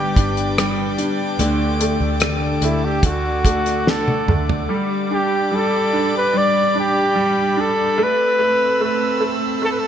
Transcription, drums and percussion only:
0, 0, Header, 1, 2, 480
1, 0, Start_track
1, 0, Key_signature, 1, "major"
1, 0, Tempo, 821918
1, 813, Time_signature, 4, 2, 24, 8
1, 5766, End_track
2, 0, Start_track
2, 0, Title_t, "Drums"
2, 96, Note_on_c, 9, 36, 77
2, 100, Note_on_c, 9, 42, 77
2, 154, Note_off_c, 9, 36, 0
2, 158, Note_off_c, 9, 42, 0
2, 217, Note_on_c, 9, 42, 49
2, 275, Note_off_c, 9, 42, 0
2, 339, Note_on_c, 9, 42, 68
2, 341, Note_on_c, 9, 37, 95
2, 398, Note_off_c, 9, 42, 0
2, 399, Note_off_c, 9, 37, 0
2, 574, Note_on_c, 9, 42, 61
2, 633, Note_off_c, 9, 42, 0
2, 813, Note_on_c, 9, 42, 74
2, 872, Note_off_c, 9, 42, 0
2, 1055, Note_on_c, 9, 42, 68
2, 1113, Note_off_c, 9, 42, 0
2, 1285, Note_on_c, 9, 42, 70
2, 1295, Note_on_c, 9, 37, 105
2, 1344, Note_off_c, 9, 42, 0
2, 1353, Note_off_c, 9, 37, 0
2, 1529, Note_on_c, 9, 42, 73
2, 1587, Note_off_c, 9, 42, 0
2, 1769, Note_on_c, 9, 36, 86
2, 1770, Note_on_c, 9, 42, 76
2, 1828, Note_off_c, 9, 36, 0
2, 1828, Note_off_c, 9, 42, 0
2, 2012, Note_on_c, 9, 36, 80
2, 2016, Note_on_c, 9, 42, 78
2, 2071, Note_off_c, 9, 36, 0
2, 2075, Note_off_c, 9, 42, 0
2, 2137, Note_on_c, 9, 42, 47
2, 2142, Note_on_c, 9, 37, 30
2, 2195, Note_off_c, 9, 42, 0
2, 2200, Note_off_c, 9, 37, 0
2, 2262, Note_on_c, 9, 38, 52
2, 2321, Note_off_c, 9, 38, 0
2, 2381, Note_on_c, 9, 48, 58
2, 2440, Note_off_c, 9, 48, 0
2, 2502, Note_on_c, 9, 45, 87
2, 2560, Note_off_c, 9, 45, 0
2, 2625, Note_on_c, 9, 43, 89
2, 2683, Note_off_c, 9, 43, 0
2, 5766, End_track
0, 0, End_of_file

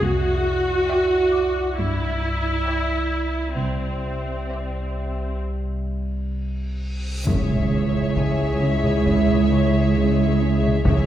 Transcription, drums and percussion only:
0, 0, Header, 1, 2, 480
1, 0, Start_track
1, 0, Key_signature, 4, "minor"
1, 0, Tempo, 881057
1, 9, Time_signature, 4, 2, 24, 8
1, 1449, Tempo, 921659
1, 3849, Tempo, 894188
1, 5885, End_track
2, 0, Start_track
2, 0, Title_t, "Taiko and cinematic ensemble drums"
2, 3850, Note_on_c, 9, 41, 80
2, 3904, Note_off_c, 9, 41, 0
2, 3972, Note_on_c, 9, 47, 40
2, 4025, Note_off_c, 9, 47, 0
2, 4331, Note_on_c, 9, 41, 73
2, 4384, Note_off_c, 9, 41, 0
2, 4692, Note_on_c, 9, 47, 39
2, 4745, Note_off_c, 9, 47, 0
2, 4812, Note_on_c, 9, 41, 72
2, 4866, Note_off_c, 9, 41, 0
2, 4935, Note_on_c, 9, 47, 40
2, 4989, Note_off_c, 9, 47, 0
2, 5653, Note_on_c, 9, 47, 43
2, 5706, Note_off_c, 9, 47, 0
2, 5772, Note_on_c, 9, 41, 94
2, 5826, Note_off_c, 9, 41, 0
2, 5885, End_track
0, 0, End_of_file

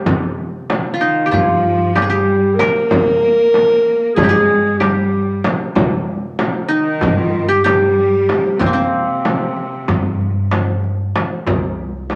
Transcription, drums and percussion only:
0, 0, Header, 1, 3, 480
1, 0, Start_track
1, 0, Key_signature, -3, "minor"
1, 0, Tempo, 633580
1, 43, Time_signature, 9, 3, 24, 8
1, 9207, End_track
2, 0, Start_track
2, 0, Title_t, "Darbuka"
2, 49, Note_on_c, 9, 64, 81
2, 125, Note_off_c, 9, 64, 0
2, 528, Note_on_c, 9, 63, 62
2, 604, Note_off_c, 9, 63, 0
2, 764, Note_on_c, 9, 62, 25
2, 840, Note_off_c, 9, 62, 0
2, 1001, Note_on_c, 9, 64, 89
2, 1077, Note_off_c, 9, 64, 0
2, 1248, Note_on_c, 9, 62, 25
2, 1324, Note_off_c, 9, 62, 0
2, 1485, Note_on_c, 9, 63, 70
2, 1561, Note_off_c, 9, 63, 0
2, 1727, Note_on_c, 9, 62, 25
2, 1803, Note_off_c, 9, 62, 0
2, 1972, Note_on_c, 9, 63, 70
2, 2048, Note_off_c, 9, 63, 0
2, 2212, Note_on_c, 9, 64, 85
2, 2288, Note_off_c, 9, 64, 0
2, 2691, Note_on_c, 9, 63, 61
2, 2767, Note_off_c, 9, 63, 0
2, 2932, Note_on_c, 9, 62, 25
2, 3008, Note_off_c, 9, 62, 0
2, 3166, Note_on_c, 9, 64, 93
2, 3242, Note_off_c, 9, 64, 0
2, 3412, Note_on_c, 9, 62, 26
2, 3488, Note_off_c, 9, 62, 0
2, 3648, Note_on_c, 9, 63, 69
2, 3724, Note_off_c, 9, 63, 0
2, 3891, Note_on_c, 9, 62, 27
2, 3967, Note_off_c, 9, 62, 0
2, 4127, Note_on_c, 9, 63, 68
2, 4203, Note_off_c, 9, 63, 0
2, 4363, Note_on_c, 9, 64, 84
2, 4439, Note_off_c, 9, 64, 0
2, 4840, Note_on_c, 9, 63, 61
2, 4916, Note_off_c, 9, 63, 0
2, 5077, Note_on_c, 9, 62, 29
2, 5153, Note_off_c, 9, 62, 0
2, 5312, Note_on_c, 9, 64, 100
2, 5388, Note_off_c, 9, 64, 0
2, 5557, Note_on_c, 9, 62, 28
2, 5633, Note_off_c, 9, 62, 0
2, 5804, Note_on_c, 9, 63, 68
2, 5880, Note_off_c, 9, 63, 0
2, 6043, Note_on_c, 9, 62, 24
2, 6119, Note_off_c, 9, 62, 0
2, 6281, Note_on_c, 9, 63, 61
2, 6356, Note_off_c, 9, 63, 0
2, 6518, Note_on_c, 9, 64, 91
2, 6594, Note_off_c, 9, 64, 0
2, 6767, Note_on_c, 9, 62, 25
2, 6843, Note_off_c, 9, 62, 0
2, 7008, Note_on_c, 9, 63, 59
2, 7084, Note_off_c, 9, 63, 0
2, 7246, Note_on_c, 9, 62, 29
2, 7322, Note_off_c, 9, 62, 0
2, 7486, Note_on_c, 9, 64, 102
2, 7562, Note_off_c, 9, 64, 0
2, 7733, Note_on_c, 9, 62, 23
2, 7809, Note_off_c, 9, 62, 0
2, 7965, Note_on_c, 9, 63, 73
2, 8041, Note_off_c, 9, 63, 0
2, 8211, Note_on_c, 9, 62, 24
2, 8287, Note_off_c, 9, 62, 0
2, 8451, Note_on_c, 9, 63, 72
2, 8527, Note_off_c, 9, 63, 0
2, 8686, Note_on_c, 9, 64, 82
2, 8762, Note_off_c, 9, 64, 0
2, 9174, Note_on_c, 9, 63, 51
2, 9207, Note_off_c, 9, 63, 0
2, 9207, End_track
3, 0, Start_track
3, 0, Title_t, "Frame drum"
3, 47, Note_on_c, 9, 64, 90
3, 123, Note_off_c, 9, 64, 0
3, 531, Note_on_c, 9, 64, 77
3, 607, Note_off_c, 9, 64, 0
3, 1012, Note_on_c, 9, 64, 87
3, 1088, Note_off_c, 9, 64, 0
3, 1497, Note_on_c, 9, 64, 69
3, 1573, Note_off_c, 9, 64, 0
3, 1964, Note_on_c, 9, 64, 71
3, 2040, Note_off_c, 9, 64, 0
3, 2203, Note_on_c, 9, 64, 97
3, 2279, Note_off_c, 9, 64, 0
3, 2683, Note_on_c, 9, 64, 67
3, 2758, Note_off_c, 9, 64, 0
3, 3163, Note_on_c, 9, 64, 102
3, 3238, Note_off_c, 9, 64, 0
3, 3642, Note_on_c, 9, 64, 67
3, 3718, Note_off_c, 9, 64, 0
3, 4124, Note_on_c, 9, 64, 83
3, 4200, Note_off_c, 9, 64, 0
3, 4365, Note_on_c, 9, 64, 100
3, 4441, Note_off_c, 9, 64, 0
3, 4841, Note_on_c, 9, 64, 81
3, 4916, Note_off_c, 9, 64, 0
3, 5322, Note_on_c, 9, 64, 101
3, 5398, Note_off_c, 9, 64, 0
3, 5801, Note_on_c, 9, 64, 75
3, 5877, Note_off_c, 9, 64, 0
3, 6285, Note_on_c, 9, 64, 76
3, 6361, Note_off_c, 9, 64, 0
3, 6523, Note_on_c, 9, 64, 81
3, 6598, Note_off_c, 9, 64, 0
3, 7010, Note_on_c, 9, 64, 76
3, 7086, Note_off_c, 9, 64, 0
3, 7490, Note_on_c, 9, 64, 84
3, 7565, Note_off_c, 9, 64, 0
3, 7974, Note_on_c, 9, 64, 68
3, 8049, Note_off_c, 9, 64, 0
3, 8452, Note_on_c, 9, 64, 66
3, 8527, Note_off_c, 9, 64, 0
3, 8692, Note_on_c, 9, 64, 87
3, 8768, Note_off_c, 9, 64, 0
3, 9166, Note_on_c, 9, 64, 64
3, 9207, Note_off_c, 9, 64, 0
3, 9207, End_track
0, 0, End_of_file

